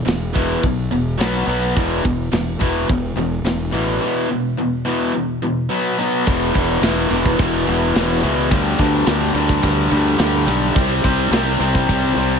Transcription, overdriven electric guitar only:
0.05 E2 B2
0.33 E2 B2 E3
0.62 E2 B2
0.91 E2 B2
1.18 B2 F#3 B3
1.46 B2 F#3 B3
1.75 E2 B2 E3
2.04 E2 B2
2.32 E2 B2
2.60 E2 B2 E3
2.88 E2 B2
3.17 E2 B2
3.45 E2 B2
3.72 E2 B2 E3
4.01 E2 B2 E3
4.30 E2 B2
4.58 E2 B2
4.85 E2 B2 E3
5.14 E2 B2
5.42 E2 B2
5.69 B2 F#3 B3
5.98 B2 F#3 B3
6.25 E2 B2 E3
6.54 E2 B2 E3
6.83 E2 B2 E3
7.11 E2 B2 E3
7.39 E2 B2 E3
7.68 E2 B2 E3
7.95 E2 B2 E3
8.22 E2 B2 E3
8.51 G2 D3 G3
8.79 G2 D3 G3
9.07 G2 D3 G3
9.34 G2 D3 G3
9.61 G2 D3 G3
9.91 G2 D3 G3
10.18 G2 D3 G3
10.45 G2 D3 G3
10.75 C3 G3 C4
11.03 C3 G3 C4
11.32 C3 G3 C4
11.60 C3 G3 C4
11.88 C3 G3 C4
12.16 C3 G3 C4

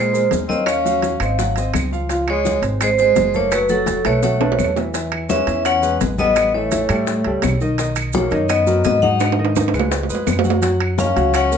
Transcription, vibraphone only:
Already playing: C5
0.49 D#5
0.66 F5
2.30 C#5
2.82 C5
3.00 C5
3.36 C#5
3.52 B4
3.70 A4
4.06 C#5
4.24 C#5
5.30 E5
5.66 F#5
6.19 D#5
6.55 C#5
8.15 C#5
8.49 D#5
8.85 D#5
9.02 F#5
11.00 F5
11.35 F#5

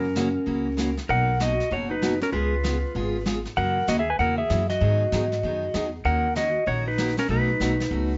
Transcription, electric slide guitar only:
Already playing: C#4 A#4
1.09 A#4 F#5
1.41 F#4 D#5
1.72 F#4 C#5
1.90 D#4 B4
2.22 C#4 A#4
2.32 F4 B4
3.57 A#4 F#5
3.88 F#4 D#5
3.99 G#4 E5
4.10 B4 G#5
4.19 A#4 F#5
4.38 G#4 E5
4.70 F#4 D#5
6.05 A#4 F#5
6.37 F#4 D#5
6.67 F#4 C#5
6.87 D#4 B4
7.19 C#4 A#4
7.30 D#4 B4

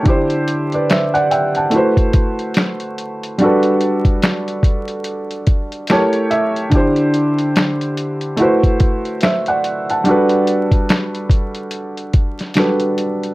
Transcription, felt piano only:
Already playing: C#5
0.03 D3 D4 E4
0.07 G4 C5
0.74 B4 D5
0.90 C5 E5
1.14 D5 F#5
1.31 E5 G5
1.56 F#5 A5
1.70 A3 E4 F#4
1.75 B4 C5
3.38 G3 D4 F#4
3.43 A4 B4
5.89 A3 E4 G4 A#4 C#5 A5
6.31 E5
6.70 D3 D4 E4
6.75 G4 C5
8.36 A3 E4 F#4
8.42 B4 C5
9.23 C5 E5
9.48 D5 F#5
9.90 F#5 A5
10.04 G3 D4 F#4
10.09 A4 B4
12.55 G3 D4 F#4 A4 B4

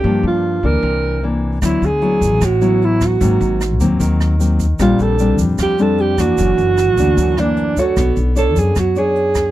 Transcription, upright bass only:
0.04 G2
0.23 G2
0.63 D2
0.83 C2
1.62 D2
1.82 D2
2.21 A1
2.41 A1
3.21 G#1
3.41 G#1
3.81 D#2
4.01 D#2
4.79 A#1
4.99 A#1
5.39 F2
5.59 F2
6.38 F#1
6.58 F#1
6.98 D2
7.17 D2
7.97 B1
8.17 B1
8.56 F#2
8.76 F#2

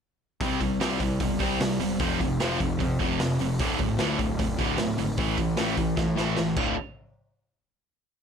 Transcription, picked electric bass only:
0.41 C2
0.61 C2
0.81 C2
1.00 C2
1.20 E1
1.40 C2
1.61 C2
1.80 E1
2.00 F1
2.20 F1
2.42 F1
2.60 F1
2.81 F2
3.00 F1
3.20 F1
3.40 F1
3.61 D1
3.79 D1
3.98 D2
4.20 D1
4.39 F1
4.59 D1
4.79 D1
4.99 G#1
5.17 A1
5.38 A1
5.60 A1
5.77 A1
5.98 A2
6.19 A1
6.38 A1
6.57 D1

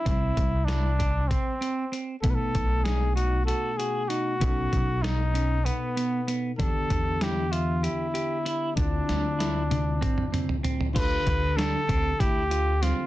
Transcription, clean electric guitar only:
0.05 C4
0.68 E4
0.99 D4
1.31 C4
1.61 C4
1.92 C4
2.23 B3
2.85 D#4
3.16 D#4
3.47 F#4
3.79 F#4
4.10 D#4
4.41 C#4
5.03 D#4
5.34 C#4
5.65 B3
5.96 B3
6.28 B3
6.59 D4
7.21 E4
7.52 E5
7.83 G4
8.14 G4
8.46 E4
8.77 D4
9.39 E4
9.70 D4
10.01 C4
10.32 C4
10.63 C4
10.95 F4
11.57 D4
11.88 C4
12.20 E4
12.50 F4
12.82 C4

